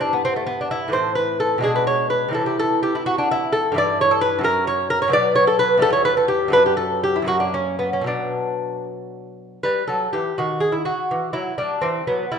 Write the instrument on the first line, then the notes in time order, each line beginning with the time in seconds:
lute
Already playing: G2 E3 B3
0.01 D4
0.13 B3
0.25 C4
0.36 A3
0.46 B3
0.61 D4
0.71 E4
0.88 A2 E3 C4
0.93 C5
1.15 B4
1.40 A4
1.58 B2 G#3
1.62 D4 G#4
1.76 B4
1.87 C#5
2.10 B4
2.28 C3 E3
2.33 E4 A4
2.46 G4
2.59 A4
2.83 G4
2.95 E4
3.06 F#4
3.18 D4
3.31 E4
3.52 A4
3.72 G2 E3
3.76 E4 D5
4.01 C#5
4.11 A4
4.21 B4
4.39 F#2 F#3
4.43 C#4 A#4
4.67 C#5
4.90 A#4
5.02 C#5
5.08 B2 F#3 B3
5.13 D5
5.36 C#5
5.47 A4
5.59 B4
5.78 E2 G3 B3
5.82 A4
5.93 C#5
6.05 B4
6.17 A4
6.28 G4
6.48 F#2 F#3 D4
6.53 B4
6.66 G4
6.77 A4
7.03 G4
7.16 E4
7.22 F#2 F#3
7.26 A#3 F#4
7.40 D4
7.54 C#4
7.79 B3
7.93 C#4
8.01 B2 F#3
8.06 B3 D4
9.63 G3 B4
9.88 F#3 A4
10.13 E3 G4
10.38 D#3 F#4
10.60 G#4
10.72 E4
10.85 F#4
11.11 E3
11.33 F#3 E4
11.58 G3 D4
11.82 E3 C4
12.07 F#3 B3
12.31 G3 E4